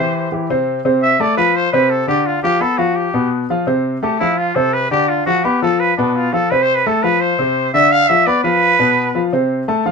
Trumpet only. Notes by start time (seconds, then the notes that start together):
Already playing: C5
1.02 E5
1.21 D5
1.37 B4
1.56 C5
1.72 B4
1.90 A4
2.08 G4
2.26 F4
2.43 G4
2.61 A4
2.78 F#4
2.96 G4
4.03 G4
4.19 E4
4.37 F4
4.55 A4
4.73 B4
4.91 G4
5.09 F4
5.26 F#4
5.44 G4
5.62 A4
5.80 B4
5.97 D4
6.16 F4
6.33 A4
6.51 B4
6.63 C5
6.75 B4
6.87 A4
7.03 B4
7.21 C5
7.74 E5
7.92 F5
8.08 E5
8.27 D5
8.43 B4